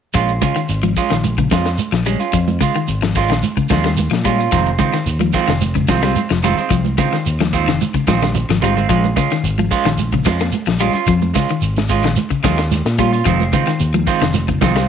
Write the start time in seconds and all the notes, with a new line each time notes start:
0.14 A#1 G#3 C#4 F4, muted clean electric guitar stroke, kick, snare, closed hi-hat, shekere
0.28 shekere
0.42 C#3 G#3 C#4 F4, kick, closed hi-hat, high conga, shekere
0.56 D#3, closed hi-hat, shekere
0.69 G#1, closed hi-hat, shekere
0.83 F3, high conga, shekere
0.97 G#3 C#4 F4, kick, open hi-hat, shekere
1.10 A#1 D#3, snare, closed hi-hat, shekere
1.24 closed hi-hat, high conga, shekere
1.38 C#3, kick, high conga, shekere
1.51 F2 F3 G#3 C#4 F4, kick, snare, closed hi-hat, high conga, shekere
1.65 snare, closed hi-hat, shekere
1.78 closed hi-hat, high conga, shekere
1.92 A#1 F3, snare, shekere
2.06 G3 G#3 C#4, closed hi-hat, shekere
2.20 C#4 F4, closed hi-hat, shekere
2.33 F2 F3, kick, closed hi-hat, shekere
2.48 high conga, shekere
2.60 C#3 G#3 F4, kick, closed hi-hat, high conga, shekere
2.75 D#3, closed hi-hat, shekere
2.88 G#1, closed hi-hat, shekere
3.02 F3, snare, shekere
3.15 G#3 C#4 F4, kick, snare, open hi-hat, shekere
3.29 A#1 D#3, snare, closed hi-hat, shekere
3.43 closed hi-hat, high conga, shekere
3.57 C#3, muted fingered electric bass stroke, kick, high conga, shekere
3.69 D#2 F3 G#3 C#4 F4, kick, snare, closed hi-hat, high conga, shekere
3.84 G3, snare, closed hi-hat, shekere
3.97 closed hi-hat, high conga, shekere
4.11 A#2 F3, snare, shekere
4.24 G3 G#3 C#4 F4, kick, closed hi-hat, shekere
4.38 C#4 F4, closed hi-hat, shekere
4.52 F1 D#3 F3 G#3 C4 F4, kick, snare, closed hi-hat, shekere
4.66 shekere
4.79 C#3 D#3 G#3 C4 F4, kick, closed hi-hat, high conga, shekere
4.94 D#3, snare, closed hi-hat, shekere
5.06 D#2, closed hi-hat, shekere
5.20 F3, high conga, shekere
5.33 D#3 G#3 C4 F4, kick, snare, open hi-hat, shekere
5.48 F1 D#3, snare, closed hi-hat, shekere
5.61 closed hi-hat, high conga, shekere
5.75 C#3, kick, high conga, shekere
5.88 C2 D#3 F3 G#3 C4 F4, kick, snare, closed hi-hat, high conga, shekere
6.02 G3 G#3 C4 F4, snare, closed hi-hat, shekere
6.16 closed hi-hat, high conga, shekere
6.30 F1 F3, snare, shekere
6.43 D#3 G3 G#3 C4 F4, closed hi-hat, high conga, shekere
6.57 G#3 C4 F4, closed hi-hat, shekere
6.70 C2 F3, kick, closed hi-hat, shekere
6.85 high conga, shekere
6.98 C#3 D#3 G#3 C4 F4, kick, closed hi-hat, high conga, shekere
7.13 D#3, snare, closed hi-hat, shekere
7.26 D#2, closed hi-hat, shekere
7.40 F3, snare, high conga, shekere
7.53 D#3 G#3 C4 F4, kick, open hi-hat, shekere
7.67 F1 D#3, snare, closed hi-hat, shekere
7.81 closed hi-hat, high conga, shekere
7.94 C#3, muted fingered electric bass stroke, kick, high conga, shekere
8.07 A#1 D#3 F3 G#3 C4 F4, kick, snare, closed hi-hat, high conga, shekere
8.22 G3, snare, closed hi-hat, low conga, shekere
8.35 closed hi-hat, low conga, shekere
8.49 G#1 F3, snare, low conga, shekere
8.61 D#3 G3 G#3 C4 F4, kick, closed hi-hat, low conga, shekere
8.76 G#3 C4 F4, closed hi-hat, low conga, shekere
8.89 A#1 F3 G#3 C#4 F4, kick, closed hi-hat, shekere
9.04 high conga, shekere
9.16 C#3 G#3 C#4 F4, kick, closed hi-hat, high conga, shekere
9.31 D#3, snare, closed hi-hat, shekere
9.43 G#1, closed hi-hat, shekere
9.58 F3, high conga, shekere
9.71 G#3 C#4 F4, kick, open hi-hat, shekere
9.85 A#1 D#3, snare, closed hi-hat, shekere
9.98 closed hi-hat, high conga, shekere
10.12 C#3, kick, high conga, shekere
10.25 F2 G#3 C#4 F4, muted clean electric guitar stroke, kick, snare, closed hi-hat, high conga, shekere
10.39 A#3, snare, closed hi-hat, shekere
10.52 closed hi-hat, high conga, shekere
10.66 A#1 F3, snare, shekere
10.79 G3 G#3 C#4 F4, closed hi-hat, shekere
10.92 C#4 F4, closed hi-hat, shekere
11.06 F2 F3, kick, closed hi-hat, shekere
11.21 high conga, shekere
11.34 C#3 G#3 C#4 F4, kick, snare, closed hi-hat, high conga, shekere
11.48 D#3, closed hi-hat, shekere
11.62 G#1, closed hi-hat, shekere
11.76 snare, high conga, shekere
11.89 G#3 C#4 F4, kick, open hi-hat, shekere
12.02 A#1 D#3, snare, closed hi-hat, shekere
12.16 closed hi-hat, high conga, shekere
12.30 C#3, muted fingered electric bass stroke, kick, shekere
12.43 D#2 F3 G#3 C#4 F4, kick, snare, closed hi-hat, high conga, shekere
12.58 muted clean electric guitar stroke, snare, closed hi-hat, shekere
12.71 snare, closed hi-hat, high conga, shekere
12.85 A#2, snare, shekere
12.98 G3 C#4 F4, kick, closed hi-hat, high conga, shekere
13.13 C#4 F4, closed hi-hat, shekere
13.25 F1 D#3 F3 G#3 C4 F4, kick, closed hi-hat, shekere
13.40 high conga, shekere
13.52 C#3 D#3 G#3 C4 F4, kick, closed hi-hat, high conga, shekere
13.66 D#3, snare, closed hi-hat, shekere
13.79 D#2, closed hi-hat, shekere
13.94 F3, high conga, shekere
14.07 D#3 G#3 C4 F4, kick, open hi-hat, shekere
14.21 F1 D#3, snare, closed hi-hat, shekere
14.34 snare, closed hi-hat, high conga, shekere
14.48 C#3, kick, high conga, shekere
14.61 C2 D#3 F3 G#3 C4 F4, kick, snare, closed hi-hat, high conga, shekere
14.75 G3 G#3 C4 F4, snare, closed hi-hat, shekere